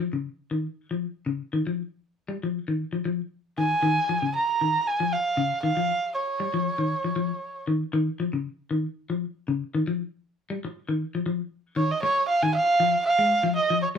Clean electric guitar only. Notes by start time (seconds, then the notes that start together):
0.13 C#3
0.51 D#3
0.91 F3
1.26 C#3
1.53 D#3
1.67 F3
2.28 G3
2.43 F3
2.68 D#3
2.93 F3
3.05 F3
3.58 D#3
3.83 D#3
4.09 F3
4.22 C#3
4.61 D#3
5.00 F3
5.37 C#3
5.63 D#3
5.77 F3
6.40 G3
6.54 F3
6.78 D#3
7.04 F3
7.16 F3
7.67 D#3
7.93 D#3
8.20 F3
8.33 C#3
8.71 D#3
9.10 F3
9.48 C#3
9.75 D#3
9.87 F3
10.50 G3
10.65 muted clean electric guitar stroke
10.89 D#3
11.15 F3
11.26 F3
11.76 D#3
12.03 muted clean electric guitar stroke
12.43 D#3
12.80 F3
13.19 G#3
13.43 F3
13.70 F3